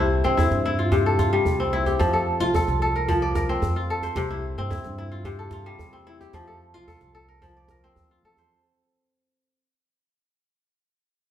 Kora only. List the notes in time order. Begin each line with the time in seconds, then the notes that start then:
Already playing: C3 C4 A4 C5
0.00 E4
0.24 C4
0.37 E4
0.66 E4
0.79 F4
0.92 C3
1.06 A4
1.19 F4
1.33 G3
1.60 C4
1.73 E4
1.86 G4
1.99 F3
2.13 A4
2.41 F4
2.55 A4
2.82 A4
2.96 A#4
3.08 F3
3.22 D5
3.35 A#4
3.49 C4
3.76 F4
3.90 A4
4.03 C5
4.17 C3
4.31 E4
4.58 C4
4.70 E4
4.98 E4
5.12 F4
5.25 C3
5.39 A4
5.53 F4
5.66 G3
5.93 C4
6.07 E4
6.21 G4
6.34 F3
6.47 A4
6.74 F4
6.88 A4
7.15 A4
7.28 A#4
7.42 F3
7.57 D5
7.70 A#4
7.84 C4
8.11 F4
8.25 A4
8.38 C5